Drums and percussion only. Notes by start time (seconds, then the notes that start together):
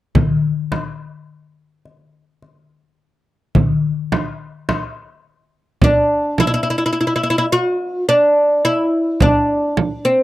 0.15 frame drum, darbuka dum
0.72 darbuka tek, frame drum
1.85 darbuka ka
2.42 darbuka ka
3.55 frame drum, darbuka dum
4.12 darbuka tek, frame drum
4.69 darbuka tek, frame drum
5.82 frame drum
6.38 frame drum
9.20 frame drum
9.77 frame drum